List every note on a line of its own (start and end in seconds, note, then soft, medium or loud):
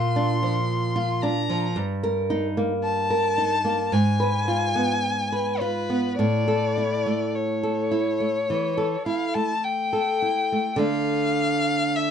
0.00 1.72 A#2 medium
0.00 0.31 F4 medium
0.00 1.23 C6 medium
0.16 0.58 D4 medium
0.43 1.28 F3 medium
0.96 1.38 F4 medium
1.22 1.66 D4 medium
1.22 1.76 A#5 medium
1.49 1.76 F3 medium
1.76 3.88 G2 medium
2.03 2.46 A#4 medium
2.30 2.73 D#4 medium
2.57 3.43 A#3 medium
2.84 3.94 A5 loud
3.10 3.54 A#4 medium
3.38 3.82 D#4 soft
3.65 3.92 A#3 medium
3.92 6.15 G#2 medium
3.92 5.62 G#5 medium
4.20 4.65 B4 soft
4.48 4.93 F4 medium
4.75 5.67 B3 medium
5.32 5.78 B4 medium
5.61 6.08 F4 soft
5.61 6.17 B4 medium
5.90 6.19 B3 soft
6.18 8.45 A2 medium
6.18 7.36 D5 medium
6.48 6.95 A4 medium
6.78 7.24 E4 soft
7.06 7.98 A3 soft
7.35 9.06 C#5 medium
7.63 8.09 A4 soft
7.91 8.38 E4 soft
8.20 8.66 A3 soft
8.50 8.96 E3 soft
8.77 9.24 A4 soft
9.06 9.52 E4 soft
9.06 9.36 F5 medium
9.34 10.29 A3 soft
9.34 9.66 A5 medium
9.64 10.80 G5 medium
9.93 10.40 A4 soft
10.22 10.70 E4 soft
10.52 10.77 A3 soft
10.76 12.11 D3 medium
10.76 12.11 A3 medium
10.76 12.11 D4 medium
10.81 11.97 F5 loud
11.95 12.11 E5 loud